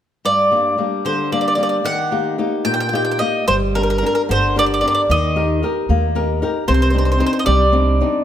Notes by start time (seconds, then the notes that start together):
0.25 G2 D5
0.52 G3 A#3 D4
0.78 G3 A#3 D4
1.05 D3 C5
1.32 G3 A#3 D4 D5
1.41 D5
1.48 D5
1.55 G3 A#3 D4 D5
1.63 D5
1.69 D5
1.84 D#3 F#5
2.11 A#3 D#4 G4
2.38 A#3 D#4 G4
2.65 A#2 G5
2.74 G5
2.80 G5
2.89 A#3 G5
2.93 D#4 G4 G5
3.05 G5
3.11 G5
3.19 A#3 D#4 G4 D#5
3.47 G1 G3 C5
3.75 D4 G4 A#4
3.83 A#4
3.90 A#4
3.98 A#4
4.02 D4 G4 A#4
4.06 A#4
4.15 A#4
4.29 G1 D3 C5
4.56 D4 G4 A#4 D5
4.74 D5
4.81 D4 G4 D5
4.85 A#4 D5
4.95 D5
5.10 D#2 D#3 D#5
5.36 D#4 G4 A#4
5.63 D#4 G4 A#4
5.89 D#2 A#3
6.15 D#4 G4 A#4
6.42 D#4 G4 A#4
6.68 C2 C3 C5
6.74 C5
6.82 C5
6.90 C4 D4 C5
6.95 D#4 C5
7.05 C5
7.12 C5
7.19 C4 D4 D#4 C5
7.26 C5
7.33 C5
7.39 D#5
7.46 C2 G3 D5
7.72 C4 D4 D#4
8.01 C4 D4 D#4